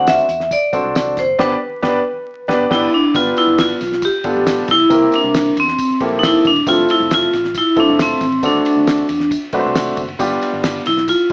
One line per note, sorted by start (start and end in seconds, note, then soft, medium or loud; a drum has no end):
0.00 0.21 D2 medium
0.00 0.24 C4 medium
0.00 0.24 D4 medium
0.00 0.27 F#4 medium
0.00 0.24 A4 medium
0.00 0.25 C5 medium
0.07 0.48 E5 loud
0.07 snare loud
0.07 closed hi-hat medium
0.07 tambourine medium
0.18 closed hi-hat soft
0.29 0.54 E2 loud
0.29 closed hi-hat medium
0.29 tambourine medium
0.29 muted conga soft
0.40 snare soft
0.51 1.20 D5 medium
0.51 kick medium
0.51 closed hi-hat medium
0.51 tambourine loud
0.51 muted conga soft
0.73 0.81 B1 medium
0.73 1.18 C4 medium
0.73 1.19 D4 medium
0.73 1.19 F#4 medium
0.73 1.19 A4 medium
0.73 1.19 C5 medium
0.73 kick medium
0.73 closed hi-hat medium
0.73 tambourine soft
0.84 1.19 C2 medium
0.84 high conga medium
0.95 snare loud
0.95 closed hi-hat loud
0.95 tambourine medium
1.05 high conga soft
1.17 1.34 F#1 medium
1.17 1.40 C5 medium
1.17 kick medium
1.17 snare soft
1.17 closed hi-hat medium
1.17 tambourine medium
1.17 muted conga soft
1.17 low conga medium
1.39 1.54 G1 loud
1.39 1.54 B3 loud
1.39 1.54 D4 loud
1.39 1.54 G4 loud
1.39 1.54 B4 loud
1.39 2.68 B4 medium
1.39 kick loud
1.39 snare loud
1.39 crash medium
1.45 1.57 D5 loud
1.82 1.98 G1 loud
1.82 1.97 B3 loud
1.82 1.98 D4 loud
1.82 1.98 G4 loud
1.82 1.98 B4 loud
1.82 kick loud
1.82 snare loud
1.89 2.01 D5 loud
2.48 2.64 G1 loud
2.48 2.63 B3 loud
2.48 2.63 D4 loud
2.48 2.63 G4 medium
2.48 2.64 B4 loud
2.48 kick loud
2.48 snare loud
2.54 2.67 D5 loud
2.70 2.86 G1 loud
2.70 2.85 B3 medium
2.70 2.85 D4 medium
2.70 2.94 E4 medium
2.70 2.85 G4 medium
2.70 2.86 B4 medium
2.70 kick loud
2.70 snare loud
2.70 crash medium
2.76 2.89 D5 loud
2.94 3.14 D4 medium
3.14 3.31 G1 loud
3.14 3.76 B3 medium
3.14 3.76 D4 medium
3.14 3.76 F4 medium
3.14 3.38 F4 loud
3.14 3.76 G4 medium
3.14 3.76 B4 medium
3.14 kick loud
3.14 ride medium
3.14 tambourine loud
3.14 low conga medium
3.26 high conga medium
3.37 3.60 E4 medium
3.37 ride medium
3.37 tambourine medium
3.47 3.73 G1 loud
3.47 high conga medium
3.58 4.05 F4 medium
3.58 snare loud
3.58 ride medium
3.58 tambourine medium
3.69 ride soft
3.80 4.06 B1 loud
3.80 snare soft
3.80 ride medium
3.80 tambourine medium
3.80 muted conga soft
3.92 snare soft
4.02 4.72 G4 loud
4.02 kick loud
4.02 ride medium
4.02 tambourine loud
4.24 4.33 G1 medium
4.24 4.70 B3 medium
4.24 4.70 D4 medium
4.24 4.71 F4 medium
4.24 4.71 G4 medium
4.24 4.71 A4 medium
4.24 kick medium
4.24 ride medium
4.24 tambourine medium
4.36 4.61 A1 loud
4.36 high conga medium
4.46 snare loud
4.46 ride medium
4.46 tambourine loud
4.57 high conga soft
4.68 4.85 B1 medium
4.68 5.15 E4 loud
4.68 kick medium
4.68 snare soft
4.68 ride medium
4.68 tambourine medium
4.68 muted conga soft
4.68 low conga medium
4.79 ride soft
4.90 5.07 C2 loud
4.90 5.51 A#3 medium
4.90 5.51 C4 medium
4.90 5.51 E4 medium
4.90 5.52 G4 medium
4.90 5.52 A#4 medium
4.90 kick loud
4.90 ride medium
4.90 tambourine loud
4.90 muted conga soft
4.90 low conga medium
5.02 high conga medium
5.12 5.60 D4 medium
5.12 ride medium
5.12 tambourine medium
5.12 muted conga soft
5.24 5.49 C2 loud
5.24 high conga medium
5.34 snare loud
5.34 ride medium
5.34 tambourine loud
5.34 muted conga soft
5.46 ride soft
5.56 5.74 E2 loud
5.56 ride medium
5.56 tambourine medium
5.56 muted conga soft
5.60 5.99 C4 medium
5.68 snare soft
5.78 kick medium
5.78 ride medium
5.78 tambourine loud
5.91 muted fingered electric bass stroke soft
6.00 6.34 A#1 medium
6.00 6.47 A#3 medium
6.00 6.47 C4 medium
6.00 6.47 E4 medium
6.00 6.47 G4 medium
6.00 6.47 A4 medium
6.00 kick medium
6.00 ride medium
6.00 tambourine soft
6.00 muted conga soft
6.12 high conga medium
6.19 6.24 D#4 medium
6.23 6.47 E4 loud
6.23 snare loud
6.23 ride loud
6.23 tambourine loud
6.33 high conga soft
6.45 6.62 E1 loud
6.45 6.69 D4 loud
6.45 kick medium
6.45 snare soft
6.45 ride medium
6.45 tambourine medium
6.45 low conga medium
6.56 ride soft
6.66 6.84 F1 loud
6.66 7.28 A3 medium
6.66 7.28 C4 medium
6.66 7.28 E4 medium
6.66 7.28 F4 medium
6.66 6.90 F4 loud
6.66 6.72 G4 medium
6.66 kick loud
6.66 ride medium
6.66 tambourine loud
6.66 low conga medium
6.73 7.31 A4 medium
6.78 high conga medium
6.89 7.13 E4 loud
6.89 ride medium
6.89 tambourine medium
6.89 muted conga soft
6.99 7.25 F1 loud
6.99 high conga medium
7.10 snare loud
7.10 ride medium
7.10 tambourine loud
7.10 muted conga soft
7.14 7.58 F4 loud
7.22 ride soft
7.32 7.59 A1 loud
7.32 snare soft
7.32 ride medium
7.32 tambourine medium
7.32 muted conga soft
7.44 snare soft
7.54 7.79 E4 loud
7.54 kick medium
7.54 ride medium
7.54 tambourine loud
7.54 muted conga soft
7.76 7.85 E1 medium
7.76 8.23 A3 medium
7.76 8.23 C4 medium
7.76 7.99 D4 loud
7.76 8.23 E4 medium
7.76 8.23 F4 medium
7.76 8.23 A4 medium
7.76 kick medium
7.76 ride medium
7.76 tambourine medium
7.76 muted conga soft
7.88 8.14 F1 loud
7.88 high conga medium
7.99 8.46 C4 loud
7.99 snare loud
7.99 ride medium
7.99 tambourine loud
8.09 high conga soft
8.21 8.38 A1 medium
8.21 kick medium
8.21 snare soft
8.21 ride medium
8.21 tambourine medium
8.21 muted conga soft
8.21 low conga medium
8.32 ride soft
8.42 8.60 D2 loud
8.42 9.04 A3 medium
8.42 9.05 C4 medium
8.42 9.05 D4 medium
8.42 9.29 D4 medium
8.42 9.05 F#4 medium
8.42 9.05 A4 medium
8.42 kick loud
8.42 ride medium
8.42 tambourine loud
8.42 low conga medium
8.55 high conga medium
8.65 ride medium
8.65 tambourine medium
8.65 muted conga soft
8.76 9.02 D2 loud
8.76 high conga medium
8.86 snare loud
8.86 ride medium
8.86 tambourine loud
8.86 muted conga soft
8.98 ride soft
9.08 9.35 E2 loud
9.08 ride medium
9.08 tambourine medium
9.08 muted conga soft
9.20 snare soft
9.31 kick medium
9.31 ride medium
9.31 tambourine loud
9.31 muted conga soft
9.53 9.62 B1 medium
9.53 9.99 A3 medium
9.53 10.00 C4 medium
9.53 10.00 D4 medium
9.53 10.00 F#4 medium
9.53 9.59 B4 medium
9.53 kick medium
9.53 ride medium
9.53 tambourine medium
9.59 10.03 C5 medium
9.64 9.91 C2 medium
9.64 high conga medium
9.75 snare loud
9.75 ride medium
9.75 tambourine medium
9.85 high conga soft
9.97 10.15 F#1 medium
9.97 kick medium
9.97 ride medium
9.97 tambourine medium
9.97 muted conga soft
9.97 low conga medium
10.08 ride soft
10.19 10.37 G1 loud
10.19 10.81 G3 medium
10.19 10.81 B3 medium
10.19 10.81 D4 medium
10.19 10.81 F4 medium
10.19 10.82 G4 loud
10.19 kick loud
10.19 ride medium
10.19 tambourine loud
10.19 low conga medium
10.31 high conga medium
10.42 ride medium
10.42 tambourine medium
10.42 muted conga soft
10.53 10.79 G1 loud
10.53 high conga medium
10.62 snare loud
10.62 ride medium
10.62 tambourine medium
10.62 muted conga soft
10.74 ride soft
10.85 11.12 B1 loud
10.85 10.97 E4 loud
10.85 snare soft
10.85 ride medium
10.85 tambourine medium
10.85 muted conga soft
10.97 snare soft
11.08 11.33 F4 loud
11.08 kick medium
11.08 ride medium
11.08 tambourine medium
11.08 muted conga soft